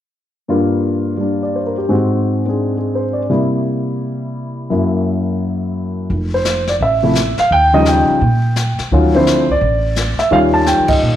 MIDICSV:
0, 0, Header, 1, 5, 480
1, 0, Start_track
1, 0, Tempo, 351494
1, 662, Time_signature, 4, 2, 24, 8
1, 15243, End_track
2, 0, Start_track
2, 0, Title_t, "Grand piano"
2, 0, Program_c, 0, 0
2, 660, Note_on_c, 0, 43, 44
2, 673, Note_on_c, 0, 55, 42
2, 676, Note_on_c, 0, 58, 45
2, 679, Note_on_c, 0, 65, 53
2, 1579, Note_off_c, 0, 55, 0
2, 1600, Note_on_c, 0, 55, 34
2, 1649, Note_on_c, 0, 62, 34
2, 1951, Note_on_c, 0, 74, 39
2, 2124, Note_on_c, 0, 72, 32
2, 2190, Note_off_c, 0, 74, 0
2, 2275, Note_on_c, 0, 70, 39
2, 2395, Note_off_c, 0, 72, 0
2, 2429, Note_on_c, 0, 67, 45
2, 2512, Note_off_c, 0, 70, 0
2, 2572, Note_off_c, 0, 55, 0
2, 2578, Note_on_c, 0, 44, 42
2, 2580, Note_on_c, 0, 56, 41
2, 2583, Note_off_c, 0, 43, 0
2, 2586, Note_on_c, 0, 60, 42
2, 2591, Note_off_c, 0, 58, 0
2, 2592, Note_off_c, 0, 65, 0
2, 2596, Note_on_c, 0, 66, 44
2, 2597, Note_off_c, 0, 62, 0
2, 2669, Note_off_c, 0, 67, 0
2, 3342, Note_off_c, 0, 60, 0
2, 3362, Note_on_c, 0, 60, 35
2, 3385, Note_on_c, 0, 62, 34
2, 3406, Note_on_c, 0, 68, 40
2, 3779, Note_off_c, 0, 68, 0
2, 3799, Note_on_c, 0, 68, 36
2, 4031, Note_on_c, 0, 72, 37
2, 4128, Note_off_c, 0, 68, 0
2, 4277, Note_on_c, 0, 74, 44
2, 4392, Note_off_c, 0, 72, 0
2, 4494, Note_off_c, 0, 60, 0
2, 4499, Note_on_c, 0, 48, 42
2, 4501, Note_on_c, 0, 55, 43
2, 4502, Note_off_c, 0, 44, 0
2, 4503, Note_off_c, 0, 56, 0
2, 4506, Note_off_c, 0, 62, 0
2, 4511, Note_off_c, 0, 66, 0
2, 4511, Note_on_c, 0, 58, 39
2, 4514, Note_on_c, 0, 64, 48
2, 4606, Note_off_c, 0, 74, 0
2, 6412, Note_off_c, 0, 58, 0
2, 6417, Note_on_c, 0, 42, 45
2, 6423, Note_off_c, 0, 48, 0
2, 6423, Note_off_c, 0, 64, 0
2, 6424, Note_off_c, 0, 55, 0
2, 6429, Note_on_c, 0, 54, 39
2, 6432, Note_on_c, 0, 58, 41
2, 6443, Note_on_c, 0, 64, 47
2, 8341, Note_off_c, 0, 42, 0
2, 8347, Note_off_c, 0, 54, 0
2, 8349, Note_off_c, 0, 58, 0
2, 8354, Note_off_c, 0, 64, 0
2, 8661, Note_on_c, 0, 72, 63
2, 9100, Note_off_c, 0, 72, 0
2, 9138, Note_on_c, 0, 74, 66
2, 9207, Note_off_c, 0, 74, 0
2, 9320, Note_on_c, 0, 76, 71
2, 9595, Note_on_c, 0, 48, 50
2, 9600, Note_on_c, 0, 53, 46
2, 9602, Note_on_c, 0, 57, 46
2, 9615, Note_on_c, 0, 64, 54
2, 9761, Note_off_c, 0, 48, 0
2, 9763, Note_off_c, 0, 53, 0
2, 9764, Note_off_c, 0, 57, 0
2, 9771, Note_off_c, 0, 64, 0
2, 10097, Note_on_c, 0, 77, 82
2, 10116, Note_off_c, 0, 76, 0
2, 10273, Note_on_c, 0, 79, 96
2, 10275, Note_off_c, 0, 77, 0
2, 10549, Note_off_c, 0, 79, 0
2, 10559, Note_on_c, 0, 49, 50
2, 10561, Note_on_c, 0, 53, 47
2, 10569, Note_on_c, 0, 55, 45
2, 10572, Note_on_c, 0, 75, 73
2, 10580, Note_on_c, 0, 63, 57
2, 10752, Note_on_c, 0, 79, 73
2, 10753, Note_off_c, 0, 75, 0
2, 11185, Note_off_c, 0, 49, 0
2, 11186, Note_off_c, 0, 53, 0
2, 11189, Note_off_c, 0, 55, 0
2, 11195, Note_off_c, 0, 63, 0
2, 11954, Note_off_c, 0, 79, 0
2, 12181, Note_on_c, 0, 51, 52
2, 12183, Note_on_c, 0, 54, 49
2, 12195, Note_on_c, 0, 61, 50
2, 12201, Note_on_c, 0, 65, 58
2, 12453, Note_off_c, 0, 51, 0
2, 12454, Note_off_c, 0, 54, 0
2, 12460, Note_off_c, 0, 61, 0
2, 12463, Note_off_c, 0, 65, 0
2, 12484, Note_on_c, 0, 50, 60
2, 12485, Note_on_c, 0, 53, 50
2, 12489, Note_on_c, 0, 60, 52
2, 12498, Note_on_c, 0, 64, 60
2, 12508, Note_on_c, 0, 72, 66
2, 12904, Note_off_c, 0, 50, 0
2, 12904, Note_off_c, 0, 53, 0
2, 12906, Note_off_c, 0, 60, 0
2, 12910, Note_off_c, 0, 64, 0
2, 12990, Note_off_c, 0, 72, 0
2, 12994, Note_on_c, 0, 74, 72
2, 13917, Note_on_c, 0, 76, 73
2, 13967, Note_off_c, 0, 74, 0
2, 14076, Note_on_c, 0, 51, 64
2, 14083, Note_on_c, 0, 55, 57
2, 14083, Note_on_c, 0, 61, 55
2, 14092, Note_on_c, 0, 65, 64
2, 14104, Note_off_c, 0, 76, 0
2, 14104, Note_on_c, 0, 77, 86
2, 14172, Note_off_c, 0, 77, 0
2, 14388, Note_on_c, 0, 81, 76
2, 14565, Note_on_c, 0, 79, 78
2, 14580, Note_off_c, 0, 81, 0
2, 14853, Note_off_c, 0, 79, 0
2, 14869, Note_on_c, 0, 75, 61
2, 15243, Note_off_c, 0, 51, 0
2, 15243, Note_off_c, 0, 55, 0
2, 15243, Note_off_c, 0, 61, 0
2, 15243, Note_off_c, 0, 65, 0
2, 15243, Note_off_c, 0, 75, 0
2, 15243, End_track
3, 0, Start_track
3, 0, Title_t, "Upright bass"
3, 0, Program_c, 1, 32
3, 8331, Note_on_c, 1, 29, 70
3, 9249, Note_off_c, 1, 29, 0
3, 9294, Note_on_c, 1, 33, 65
3, 10025, Note_off_c, 1, 33, 0
3, 10253, Note_on_c, 1, 39, 66
3, 10984, Note_off_c, 1, 39, 0
3, 11215, Note_on_c, 1, 46, 73
3, 11946, Note_off_c, 1, 46, 0
3, 12172, Note_on_c, 1, 38, 67
3, 12904, Note_off_c, 1, 38, 0
3, 12961, Note_on_c, 1, 37, 54
3, 13117, Note_off_c, 1, 37, 0
3, 13125, Note_on_c, 1, 33, 74
3, 13860, Note_off_c, 1, 33, 0
3, 14087, Note_on_c, 1, 39, 69
3, 14689, Note_off_c, 1, 39, 0
3, 14732, Note_on_c, 1, 41, 52
3, 14885, Note_off_c, 1, 41, 0
3, 14897, Note_on_c, 1, 37, 55
3, 15048, Note_off_c, 1, 37, 0
3, 15057, Note_on_c, 1, 46, 67
3, 15243, Note_off_c, 1, 46, 0
3, 15243, End_track
4, 0, Start_track
4, 0, Title_t, "Muted upright bass strokes"
4, 10088, Note_on_c, 9, 29, 31
4, 10224, Note_off_c, 9, 29, 0
4, 11046, Note_on_c, 9, 29, 29
4, 11182, Note_off_c, 9, 29, 0
4, 12004, Note_on_c, 9, 29, 33
4, 12141, Note_off_c, 9, 29, 0
4, 13917, Note_on_c, 9, 29, 33
4, 14053, Note_off_c, 9, 29, 0
4, 15243, End_track
5, 0, Start_track
5, 0, Title_t, "Drums"
5, 8329, Note_on_c, 9, 25, 37
5, 8330, Note_on_c, 9, 36, 27
5, 8467, Note_off_c, 9, 36, 0
5, 8807, Note_on_c, 9, 44, 56
5, 8812, Note_on_c, 9, 38, 48
5, 8944, Note_off_c, 9, 44, 0
5, 8948, Note_off_c, 9, 38, 0
5, 9113, Note_on_c, 9, 38, 33
5, 9250, Note_off_c, 9, 38, 0
5, 9290, Note_off_c, 9, 25, 0
5, 9290, Note_on_c, 9, 25, 43
5, 9290, Note_on_c, 9, 36, 27
5, 9426, Note_off_c, 9, 36, 0
5, 9765, Note_on_c, 9, 44, 51
5, 9769, Note_on_c, 9, 38, 49
5, 9902, Note_off_c, 9, 44, 0
5, 9906, Note_off_c, 9, 38, 0
5, 10074, Note_on_c, 9, 38, 31
5, 10210, Note_off_c, 9, 38, 0
5, 10249, Note_off_c, 9, 25, 0
5, 10249, Note_on_c, 9, 25, 44
5, 10251, Note_on_c, 9, 36, 26
5, 10387, Note_off_c, 9, 36, 0
5, 10725, Note_on_c, 9, 44, 43
5, 10729, Note_on_c, 9, 38, 52
5, 10862, Note_off_c, 9, 44, 0
5, 10866, Note_off_c, 9, 38, 0
5, 11213, Note_on_c, 9, 36, 25
5, 11214, Note_off_c, 9, 25, 0
5, 11214, Note_on_c, 9, 25, 35
5, 11350, Note_off_c, 9, 36, 0
5, 11688, Note_on_c, 9, 44, 57
5, 11692, Note_on_c, 9, 38, 51
5, 11824, Note_off_c, 9, 44, 0
5, 11829, Note_off_c, 9, 38, 0
5, 11999, Note_on_c, 9, 38, 29
5, 12135, Note_off_c, 9, 38, 0
5, 12174, Note_off_c, 9, 25, 0
5, 12174, Note_on_c, 9, 25, 41
5, 12174, Note_on_c, 9, 36, 25
5, 12310, Note_off_c, 9, 36, 0
5, 12655, Note_on_c, 9, 44, 56
5, 12659, Note_on_c, 9, 38, 51
5, 12791, Note_off_c, 9, 44, 0
5, 12795, Note_off_c, 9, 38, 0
5, 13127, Note_off_c, 9, 25, 0
5, 13127, Note_on_c, 9, 25, 41
5, 13129, Note_on_c, 9, 36, 26
5, 13265, Note_off_c, 9, 36, 0
5, 13605, Note_on_c, 9, 44, 45
5, 13609, Note_on_c, 9, 38, 50
5, 13742, Note_off_c, 9, 44, 0
5, 13746, Note_off_c, 9, 38, 0
5, 13912, Note_on_c, 9, 38, 32
5, 14049, Note_off_c, 9, 38, 0
5, 14085, Note_on_c, 9, 36, 26
5, 14086, Note_off_c, 9, 25, 0
5, 14086, Note_on_c, 9, 25, 37
5, 14222, Note_off_c, 9, 36, 0
5, 14561, Note_on_c, 9, 44, 50
5, 14565, Note_on_c, 9, 38, 46
5, 14698, Note_off_c, 9, 44, 0
5, 14702, Note_off_c, 9, 38, 0
5, 14859, Note_on_c, 9, 51, 62
5, 14866, Note_on_c, 9, 36, 67
5, 14995, Note_off_c, 9, 51, 0
5, 15003, Note_off_c, 9, 36, 0
5, 15043, Note_off_c, 9, 25, 0
5, 15043, Note_on_c, 9, 25, 38
5, 15243, Note_off_c, 9, 25, 0
5, 15243, End_track
0, 0, End_of_file